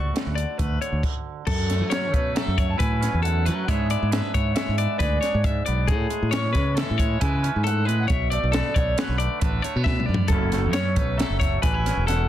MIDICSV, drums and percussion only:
0, 0, Header, 1, 2, 480
1, 0, Start_track
1, 0, Tempo, 441501
1, 1605, Time_signature, 5, 2, 24, 8
1, 13356, End_track
2, 0, Start_track
2, 0, Title_t, "Drums"
2, 171, Note_on_c, 9, 42, 78
2, 182, Note_on_c, 9, 38, 103
2, 280, Note_off_c, 9, 42, 0
2, 291, Note_off_c, 9, 38, 0
2, 409, Note_on_c, 9, 42, 71
2, 518, Note_off_c, 9, 42, 0
2, 644, Note_on_c, 9, 42, 90
2, 645, Note_on_c, 9, 36, 113
2, 753, Note_off_c, 9, 42, 0
2, 754, Note_off_c, 9, 36, 0
2, 891, Note_on_c, 9, 42, 62
2, 1000, Note_off_c, 9, 42, 0
2, 1124, Note_on_c, 9, 36, 103
2, 1126, Note_on_c, 9, 49, 86
2, 1233, Note_off_c, 9, 36, 0
2, 1235, Note_off_c, 9, 49, 0
2, 1597, Note_on_c, 9, 49, 112
2, 1602, Note_on_c, 9, 36, 107
2, 1705, Note_off_c, 9, 49, 0
2, 1711, Note_off_c, 9, 36, 0
2, 1844, Note_on_c, 9, 42, 77
2, 1855, Note_on_c, 9, 38, 36
2, 1953, Note_off_c, 9, 42, 0
2, 1963, Note_off_c, 9, 38, 0
2, 2081, Note_on_c, 9, 42, 101
2, 2092, Note_on_c, 9, 38, 111
2, 2190, Note_off_c, 9, 42, 0
2, 2200, Note_off_c, 9, 38, 0
2, 2323, Note_on_c, 9, 36, 79
2, 2324, Note_on_c, 9, 42, 64
2, 2432, Note_off_c, 9, 36, 0
2, 2433, Note_off_c, 9, 42, 0
2, 2565, Note_on_c, 9, 42, 90
2, 2576, Note_on_c, 9, 38, 106
2, 2674, Note_off_c, 9, 42, 0
2, 2685, Note_off_c, 9, 38, 0
2, 2805, Note_on_c, 9, 36, 84
2, 2807, Note_on_c, 9, 42, 76
2, 2914, Note_off_c, 9, 36, 0
2, 2916, Note_off_c, 9, 42, 0
2, 3043, Note_on_c, 9, 42, 107
2, 3046, Note_on_c, 9, 36, 122
2, 3152, Note_off_c, 9, 42, 0
2, 3155, Note_off_c, 9, 36, 0
2, 3289, Note_on_c, 9, 42, 69
2, 3300, Note_on_c, 9, 38, 34
2, 3398, Note_off_c, 9, 42, 0
2, 3409, Note_off_c, 9, 38, 0
2, 3535, Note_on_c, 9, 42, 97
2, 3644, Note_off_c, 9, 42, 0
2, 3764, Note_on_c, 9, 42, 79
2, 3872, Note_off_c, 9, 42, 0
2, 4006, Note_on_c, 9, 36, 114
2, 4009, Note_on_c, 9, 42, 99
2, 4115, Note_off_c, 9, 36, 0
2, 4118, Note_off_c, 9, 42, 0
2, 4240, Note_on_c, 9, 42, 70
2, 4349, Note_off_c, 9, 42, 0
2, 4482, Note_on_c, 9, 42, 91
2, 4493, Note_on_c, 9, 38, 113
2, 4591, Note_off_c, 9, 42, 0
2, 4602, Note_off_c, 9, 38, 0
2, 4725, Note_on_c, 9, 36, 80
2, 4725, Note_on_c, 9, 42, 67
2, 4834, Note_off_c, 9, 36, 0
2, 4834, Note_off_c, 9, 42, 0
2, 4955, Note_on_c, 9, 42, 107
2, 4966, Note_on_c, 9, 38, 116
2, 5064, Note_off_c, 9, 42, 0
2, 5074, Note_off_c, 9, 38, 0
2, 5196, Note_on_c, 9, 42, 78
2, 5305, Note_off_c, 9, 42, 0
2, 5437, Note_on_c, 9, 42, 100
2, 5440, Note_on_c, 9, 36, 118
2, 5448, Note_on_c, 9, 38, 35
2, 5546, Note_off_c, 9, 42, 0
2, 5549, Note_off_c, 9, 36, 0
2, 5557, Note_off_c, 9, 38, 0
2, 5680, Note_on_c, 9, 42, 68
2, 5691, Note_on_c, 9, 38, 35
2, 5789, Note_off_c, 9, 42, 0
2, 5800, Note_off_c, 9, 38, 0
2, 5916, Note_on_c, 9, 42, 85
2, 5917, Note_on_c, 9, 36, 111
2, 6025, Note_off_c, 9, 42, 0
2, 6026, Note_off_c, 9, 36, 0
2, 6155, Note_on_c, 9, 42, 64
2, 6264, Note_off_c, 9, 42, 0
2, 6396, Note_on_c, 9, 42, 92
2, 6399, Note_on_c, 9, 36, 108
2, 6505, Note_off_c, 9, 42, 0
2, 6508, Note_off_c, 9, 36, 0
2, 6636, Note_on_c, 9, 42, 70
2, 6745, Note_off_c, 9, 42, 0
2, 6877, Note_on_c, 9, 42, 99
2, 6888, Note_on_c, 9, 38, 123
2, 6986, Note_off_c, 9, 42, 0
2, 6997, Note_off_c, 9, 38, 0
2, 7117, Note_on_c, 9, 42, 74
2, 7122, Note_on_c, 9, 36, 84
2, 7128, Note_on_c, 9, 38, 33
2, 7226, Note_off_c, 9, 42, 0
2, 7231, Note_off_c, 9, 36, 0
2, 7237, Note_off_c, 9, 38, 0
2, 7358, Note_on_c, 9, 42, 91
2, 7369, Note_on_c, 9, 38, 112
2, 7467, Note_off_c, 9, 42, 0
2, 7478, Note_off_c, 9, 38, 0
2, 7604, Note_on_c, 9, 36, 81
2, 7605, Note_on_c, 9, 42, 77
2, 7713, Note_off_c, 9, 36, 0
2, 7714, Note_off_c, 9, 42, 0
2, 7841, Note_on_c, 9, 42, 111
2, 7845, Note_on_c, 9, 36, 109
2, 7949, Note_off_c, 9, 42, 0
2, 7954, Note_off_c, 9, 36, 0
2, 8089, Note_on_c, 9, 42, 75
2, 8198, Note_off_c, 9, 42, 0
2, 8335, Note_on_c, 9, 42, 105
2, 8444, Note_off_c, 9, 42, 0
2, 8574, Note_on_c, 9, 42, 72
2, 8683, Note_off_c, 9, 42, 0
2, 8802, Note_on_c, 9, 42, 96
2, 8806, Note_on_c, 9, 36, 113
2, 8911, Note_off_c, 9, 42, 0
2, 8915, Note_off_c, 9, 36, 0
2, 9041, Note_on_c, 9, 42, 79
2, 9150, Note_off_c, 9, 42, 0
2, 9278, Note_on_c, 9, 42, 101
2, 9289, Note_on_c, 9, 38, 118
2, 9387, Note_off_c, 9, 42, 0
2, 9398, Note_off_c, 9, 38, 0
2, 9523, Note_on_c, 9, 36, 75
2, 9523, Note_on_c, 9, 42, 76
2, 9632, Note_off_c, 9, 36, 0
2, 9632, Note_off_c, 9, 42, 0
2, 9760, Note_on_c, 9, 42, 97
2, 9770, Note_on_c, 9, 38, 117
2, 9868, Note_off_c, 9, 42, 0
2, 9879, Note_off_c, 9, 38, 0
2, 10000, Note_on_c, 9, 42, 79
2, 10108, Note_off_c, 9, 42, 0
2, 10235, Note_on_c, 9, 42, 102
2, 10242, Note_on_c, 9, 36, 113
2, 10344, Note_off_c, 9, 42, 0
2, 10351, Note_off_c, 9, 36, 0
2, 10483, Note_on_c, 9, 42, 68
2, 10592, Note_off_c, 9, 42, 0
2, 10719, Note_on_c, 9, 36, 113
2, 10724, Note_on_c, 9, 38, 60
2, 10828, Note_off_c, 9, 36, 0
2, 10833, Note_off_c, 9, 38, 0
2, 10871, Note_on_c, 9, 45, 67
2, 10980, Note_off_c, 9, 45, 0
2, 11028, Note_on_c, 9, 43, 103
2, 11137, Note_off_c, 9, 43, 0
2, 11176, Note_on_c, 9, 42, 86
2, 11196, Note_on_c, 9, 36, 120
2, 11285, Note_off_c, 9, 42, 0
2, 11305, Note_off_c, 9, 36, 0
2, 11437, Note_on_c, 9, 42, 70
2, 11447, Note_on_c, 9, 38, 36
2, 11545, Note_off_c, 9, 42, 0
2, 11556, Note_off_c, 9, 38, 0
2, 11667, Note_on_c, 9, 42, 99
2, 11678, Note_on_c, 9, 38, 108
2, 11776, Note_off_c, 9, 42, 0
2, 11787, Note_off_c, 9, 38, 0
2, 11919, Note_on_c, 9, 42, 77
2, 11922, Note_on_c, 9, 36, 72
2, 12028, Note_off_c, 9, 42, 0
2, 12031, Note_off_c, 9, 36, 0
2, 12170, Note_on_c, 9, 42, 98
2, 12181, Note_on_c, 9, 38, 107
2, 12279, Note_off_c, 9, 42, 0
2, 12290, Note_off_c, 9, 38, 0
2, 12407, Note_on_c, 9, 36, 75
2, 12407, Note_on_c, 9, 42, 80
2, 12418, Note_on_c, 9, 38, 40
2, 12516, Note_off_c, 9, 36, 0
2, 12516, Note_off_c, 9, 42, 0
2, 12526, Note_off_c, 9, 38, 0
2, 12644, Note_on_c, 9, 42, 105
2, 12649, Note_on_c, 9, 36, 118
2, 12753, Note_off_c, 9, 42, 0
2, 12758, Note_off_c, 9, 36, 0
2, 12896, Note_on_c, 9, 42, 80
2, 12907, Note_on_c, 9, 38, 35
2, 13005, Note_off_c, 9, 42, 0
2, 13015, Note_off_c, 9, 38, 0
2, 13136, Note_on_c, 9, 42, 103
2, 13147, Note_on_c, 9, 38, 33
2, 13244, Note_off_c, 9, 42, 0
2, 13255, Note_off_c, 9, 38, 0
2, 13356, End_track
0, 0, End_of_file